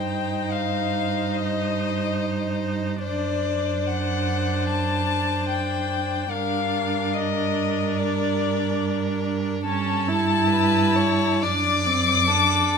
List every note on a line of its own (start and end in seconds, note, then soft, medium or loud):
0.00 3.05 G2 soft
0.00 2.99 D#4 soft
0.00 3.00 C5 soft
0.00 0.54 G5 medium
0.52 1.36 F5 medium
1.34 2.62 D#5 medium
3.03 6.33 F#2 soft
3.03 6.29 D4 soft
3.03 6.30 C5 soft
3.03 3.88 D5 medium
3.86 4.68 F#5 medium
4.68 5.49 A5 medium
5.50 6.33 G5 medium
6.31 9.62 G2 soft
6.31 9.61 D4 medium
6.31 9.62 A#4 soft
6.31 7.15 F5 medium
7.14 7.99 D#5 medium
7.98 9.24 D5 medium
9.65 11.44 G2 medium
9.65 10.09 C#4 medium
9.65 10.47 A4 soft
9.65 11.43 A5 medium
10.08 11.44 E4 medium
10.50 10.97 B4 medium
10.96 11.44 C#5 medium
11.41 12.78 F#2 medium
11.41 11.87 D4 medium
11.41 12.29 D5 medium
11.41 12.78 D6 medium
11.86 12.30 C4 medium
12.27 12.78 D4 medium
12.27 12.78 A4 medium